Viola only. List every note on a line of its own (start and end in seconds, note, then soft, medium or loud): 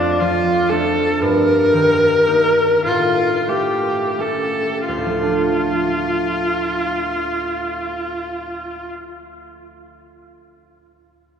0.00 0.21 D4 medium
0.20 0.71 F4 medium
0.69 1.23 A4 medium
1.22 2.85 A#4 medium
2.86 3.50 F4 medium
3.49 4.22 G4 soft
4.20 4.87 A4 medium
4.88 8.88 F4 soft